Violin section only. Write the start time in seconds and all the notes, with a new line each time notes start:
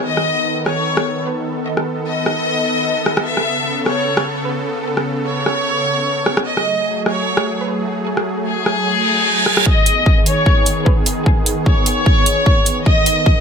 0.06 D#5
0.66 C#5
1.26 B4
1.66 D#5
2.06 D#5
3.26 E5
3.86 C#5
4.46 B4
4.86 A4
5.26 C#5
6.46 D#5
7.06 C#5
7.66 B4
8.06 G#4
8.46 G#4
9.66 D#5
10.26 C#5
10.86 B4
11.26 G#4
11.66 C#5
12.86 D#5